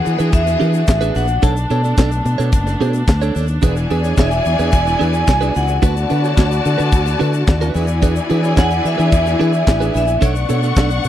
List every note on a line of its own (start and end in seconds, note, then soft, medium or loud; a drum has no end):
0.00 1.41 E3 medium
0.00 1.41 B3 medium
0.00 5.79 D4 medium
0.00 1.40 F#4 medium
0.00 1.41 G#4 loud
0.00 0.30 F#5 medium
0.05 0.17 E3 medium
0.05 muted clean electric guitar stroke soft
0.05 closed hi-hat medium
0.05 shaker medium
0.19 0.31 E3 medium
0.19 0.30 D4 medium
0.19 0.30 G#4 medium
0.19 0.29 B4 medium
0.19 closed hi-hat medium
0.19 shaker medium
0.32 0.55 E2 medium
0.32 1.18 E5 loud
0.32 kick loud
0.32 closed hi-hat loud
0.32 shaker medium
0.46 muted clean electric guitar stroke soft
0.46 snare soft
0.46 closed hi-hat soft
0.46 shaker medium
0.60 0.83 E3 loud
0.60 0.80 D4 medium
0.60 0.74 G#4 loud
0.60 0.74 B4 medium
0.60 closed hi-hat medium
0.73 muted clean electric guitar stroke medium
0.73 closed hi-hat soft
0.73 shaker medium
0.87 1.10 A1 medium
0.87 muted clean electric guitar stroke soft
0.87 kick loud
0.87 snare medium
0.87 clap medium
0.87 shaker medium
1.01 1.13 D4 medium
1.01 1.15 G#4 medium
1.01 1.15 B4 loud
1.01 closed hi-hat soft
1.01 shaker medium
1.14 1.37 A#1 loud
1.14 1.25 D4 medium
1.14 1.26 G#4 medium
1.14 1.26 B4 medium
1.14 1.44 F#5 loud
1.14 open hi-hat medium
1.14 shaker medium
1.28 closed hi-hat soft
1.28 shaker medium
1.42 1.65 B1 loud
1.42 3.61 A3 medium
1.42 3.61 B3 medium
1.42 1.56 D4 medium
1.42 1.56 A4 loud
1.42 1.55 C#5 medium
1.42 3.31 A5 loud
1.42 kick loud
1.42 closed hi-hat medium
1.42 shaker medium
1.56 muted clean electric guitar stroke soft
1.56 closed hi-hat soft
1.56 shaker medium
1.70 1.92 B2 loud
1.70 1.81 D4 medium
1.70 1.81 A4 medium
1.70 1.81 C#5 medium
1.70 closed hi-hat medium
1.84 1.95 D4 soft
1.84 1.95 A4 medium
1.84 1.94 D5 medium
1.84 closed hi-hat soft
1.84 shaker medium
1.98 2.20 B1 loud
1.98 2.11 D4 loud
1.98 2.11 A4 loud
1.98 2.11 D5 loud
1.98 kick loud
1.98 snare loud
1.98 clap medium
1.98 shaker medium
2.12 closed hi-hat medium
2.12 shaker medium
2.25 2.36 B2 loud
2.25 muted clean electric guitar stroke medium
2.25 closed hi-hat medium
2.25 shaker medium
2.38 2.50 B2 loud
2.38 2.50 D4 medium
2.38 2.50 A4 medium
2.38 2.49 C#5 medium
2.38 closed hi-hat soft
2.38 shaker medium
2.52 2.75 F#1 loud
2.52 kick loud
2.52 closed hi-hat medium
2.52 shaker loud
2.67 muted clean electric guitar stroke soft
2.67 snare soft
2.67 closed hi-hat medium
2.67 shaker medium
2.81 3.02 B2 medium
2.81 3.01 D4 loud
2.81 2.94 A4 loud
2.81 2.93 C#5 loud
2.81 closed hi-hat medium
2.93 muted clean electric guitar stroke soft
2.93 closed hi-hat medium
2.93 shaker medium
3.08 3.30 D2 loud
3.08 muted clean electric guitar stroke soft
3.08 kick loud
3.08 snare loud
3.08 clap medium
3.08 shaker medium
3.22 3.34 D4 medium
3.22 3.35 A4 medium
3.22 3.35 C#5 medium
3.22 closed hi-hat soft
3.22 shaker medium
3.35 3.57 D#2 medium
3.35 3.46 D4 medium
3.35 3.46 A4 medium
3.35 3.46 C#5 medium
3.35 open hi-hat medium
3.35 shaker medium
3.48 closed hi-hat soft
3.48 shaker medium
3.62 3.85 E1 loud
3.62 5.80 E3 medium
3.62 7.71 B3 medium
3.62 3.76 D4 medium
3.62 5.78 E4 medium
3.62 10.18 F#4 medium
3.62 5.80 G#4 medium
3.62 3.76 G#4 loud
3.62 3.75 B4 loud
3.62 5.78 D5 loud
3.62 5.79 G#5 loud
3.62 kick loud
3.62 closed hi-hat medium
3.62 shaker medium
3.76 closed hi-hat soft
3.76 shaker medium
3.90 4.12 E2 loud
3.90 4.01 D4 medium
3.90 4.01 G#4 medium
3.90 4.01 B4 medium
3.90 closed hi-hat medium
4.04 4.15 D4 medium
4.04 4.15 G#4 medium
4.04 4.14 C#5 medium
4.04 closed hi-hat soft
4.04 shaker medium
4.17 4.40 E1 medium
4.17 4.31 D4 medium
4.17 4.31 G#4 loud
4.17 4.31 C#5 loud
4.17 4.75 E5 medium
4.17 kick loud
4.17 snare loud
4.17 clap medium
4.17 shaker medium
4.31 muted clean electric guitar stroke soft
4.31 closed hi-hat medium
4.31 shaker medium
4.45 4.56 E2 medium
4.45 muted clean electric guitar stroke medium
4.45 closed hi-hat medium
4.45 shaker medium
4.59 4.70 E2 medium
4.59 4.70 D4 medium
4.59 4.70 G#4 medium
4.59 4.69 B4 medium
4.59 closed hi-hat soft
4.59 shaker soft
4.72 4.95 E1 loud
4.72 5.27 G#5 loud
4.72 kick loud
4.72 closed hi-hat medium
4.72 shaker medium
4.86 muted clean electric guitar stroke soft
4.86 snare soft
4.86 closed hi-hat soft
4.86 shaker medium
4.99 5.22 E2 loud
4.99 5.13 D4 medium
4.99 5.13 G#4 medium
4.99 5.12 B4 loud
4.99 closed hi-hat medium
5.13 muted clean electric guitar stroke medium
5.13 closed hi-hat soft
5.13 shaker medium
5.27 5.50 C2 medium
5.27 5.56 G#5 loud
5.27 muted clean electric guitar stroke soft
5.27 kick loud
5.27 snare loud
5.27 clap medium
5.27 shaker medium
5.41 5.54 D4 medium
5.41 5.54 G#4 medium
5.41 5.54 B4 medium
5.41 closed hi-hat soft
5.41 shaker medium
5.55 5.78 C#2 medium
5.55 7.16 F#5 loud
5.55 open hi-hat medium
5.55 shaker medium
5.68 muted clean electric guitar stroke soft
5.68 closed hi-hat soft
5.68 shaker medium
5.82 6.04 D2 loud
5.82 7.73 D3 medium
5.82 7.73 A3 medium
5.82 5.95 D4 medium
5.82 7.73 E4 medium
5.82 7.71 F#4 loud
5.82 5.96 F#4 loud
5.82 5.95 B4 loud
5.82 7.71 D5 loud
5.82 7.71 A5 loud
5.82 kick loud
5.82 closed hi-hat medium
5.82 shaker medium
5.96 muted clean electric guitar stroke soft
5.96 closed hi-hat soft
5.96 shaker medium
6.10 6.32 D3 medium
6.10 6.20 D4 medium
6.10 6.20 F#4 medium
6.10 6.21 B4 medium
6.10 closed hi-hat medium
6.24 6.35 D4 medium
6.24 6.35 F#4 medium
6.24 6.34 C#5 medium
6.24 closed hi-hat soft
6.24 shaker medium
6.37 6.59 D2 loud
6.37 6.50 D4 medium
6.37 6.51 F#4 loud
6.37 6.51 C#5 loud
6.37 kick loud
6.37 snare loud
6.37 clap medium
6.37 shaker medium
6.51 muted clean electric guitar stroke medium
6.51 closed hi-hat medium
6.51 shaker medium
6.65 6.76 D3 medium
6.65 muted clean electric guitar stroke medium
6.65 closed hi-hat medium
6.65 shaker medium
6.78 6.90 D3 loud
6.78 6.89 D4 medium
6.78 6.89 F#4 medium
6.78 6.89 B4 medium
6.78 closed hi-hat soft
6.78 shaker medium
6.92 7.14 D2 medium
6.92 kick loud
6.92 closed hi-hat medium
6.92 shaker medium
7.06 muted clean electric guitar stroke soft
7.06 snare soft
7.06 closed hi-hat medium
7.06 shaker medium
7.19 7.42 D3 loud
7.19 7.33 D4 loud
7.19 7.33 F#4 loud
7.19 7.33 B4 loud
7.19 closed hi-hat medium
7.33 closed hi-hat soft
7.33 shaker medium
7.47 7.69 D#2 loud
7.47 muted clean electric guitar stroke soft
7.47 kick loud
7.47 snare loud
7.47 clap medium
7.47 shaker loud
7.61 7.73 D4 medium
7.61 7.75 F#4 medium
7.61 7.75 B4 medium
7.61 closed hi-hat medium
7.61 shaker medium
7.74 8.18 E2 loud
7.74 10.20 E3 medium
7.74 11.08 B3 medium
7.74 7.85 D4 medium
7.74 10.20 D4 medium
7.74 10.18 E4 loud
7.74 10.20 G#4 medium
7.74 7.86 G#4 medium
7.74 7.86 B4 medium
7.74 10.18 D5 medium
7.74 10.18 G#5 loud
7.74 open hi-hat medium
7.74 shaker medium
7.88 muted clean electric guitar stroke soft
7.88 closed hi-hat soft
7.88 shaker medium
8.02 8.15 D4 medium
8.02 8.16 G#4 medium
8.02 8.14 B4 loud
8.02 kick loud
8.02 closed hi-hat medium
8.02 shaker medium
8.16 closed hi-hat soft
8.16 shaker medium
8.30 8.52 E3 medium
8.30 8.40 D4 medium
8.30 8.40 G#4 medium
8.30 8.41 B4 medium
8.30 closed hi-hat medium
8.43 8.54 D4 medium
8.43 8.54 G#4 medium
8.43 8.54 C#5 medium
8.43 closed hi-hat soft
8.43 shaker medium
8.56 8.79 E2 loud
8.56 8.70 D4 medium
8.56 8.70 G#4 loud
8.56 8.70 C#5 loud
8.56 8.65 F#5 loud
8.56 kick loud
8.56 snare loud
8.56 clap medium
8.56 shaker medium
8.64 8.71 G#5 loud
8.71 8.85 F#5 loud
8.71 closed hi-hat medium
8.71 shaker medium
8.84 8.96 E3 medium
8.84 9.96 E5 loud
8.84 muted clean electric guitar stroke soft
8.84 closed hi-hat medium
8.84 shaker medium
8.98 9.10 E3 medium
8.98 9.09 D4 medium
8.98 9.09 G#4 medium
8.98 9.08 B4 medium
8.98 closed hi-hat soft
8.98 shaker medium
9.12 9.34 E2 loud
9.12 kick loud
9.12 closed hi-hat medium
9.12 shaker loud
9.26 muted clean electric guitar stroke soft
9.26 snare soft
9.26 closed hi-hat soft
9.26 shaker medium
9.39 9.62 E3 loud
9.39 9.53 D4 loud
9.39 9.53 G#4 loud
9.39 9.52 B4 loud
9.39 closed hi-hat medium
9.53 muted clean electric guitar stroke soft
9.53 closed hi-hat soft
9.53 shaker medium
9.67 9.89 A1 medium
9.67 muted clean electric guitar stroke soft
9.67 kick loud
9.67 snare medium
9.67 clap medium
9.67 shaker medium
9.80 9.93 D4 medium
9.80 9.94 G#4 medium
9.80 9.94 B4 medium
9.80 closed hi-hat soft
9.80 shaker medium
9.94 10.17 A#1 loud
9.94 10.04 D4 medium
9.94 10.05 G#4 medium
9.94 10.05 B4 medium
9.94 10.24 E5 loud
9.94 open hi-hat medium
9.94 shaker medium
10.08 closed hi-hat soft
10.08 shaker medium
10.21 10.44 B1 loud
10.21 11.08 A3 medium
10.21 10.35 D4 medium
10.21 11.08 D4 medium
10.21 10.35 A4 loud
10.21 10.34 C#5 loud
10.21 11.08 D5 medium
10.21 11.08 F#5 loud
10.21 11.08 C#6 medium
10.21 kick loud
10.21 closed hi-hat medium
10.21 shaker medium
10.35 muted clean electric guitar stroke soft
10.35 closed hi-hat soft
10.35 shaker medium
10.49 10.71 B2 loud
10.49 10.59 D4 medium
10.49 10.60 A4 medium
10.49 10.60 C#5 medium
10.49 closed hi-hat medium
10.49 shaker medium
10.63 10.74 D4 medium
10.63 10.74 A4 medium
10.63 10.73 D5 medium
10.63 closed hi-hat soft
10.63 shaker medium
10.76 10.98 B1 loud
10.76 10.90 D4 loud
10.76 10.90 A4 loud
10.76 10.90 D5 medium
10.76 kick loud
10.76 snare loud
10.76 clap medium
10.76 shaker medium
10.90 muted clean electric guitar stroke medium
10.90 closed hi-hat soft
10.90 shaker medium
11.04 11.08 B2 medium
11.04 muted clean electric guitar stroke soft
11.04 closed hi-hat medium
11.04 shaker medium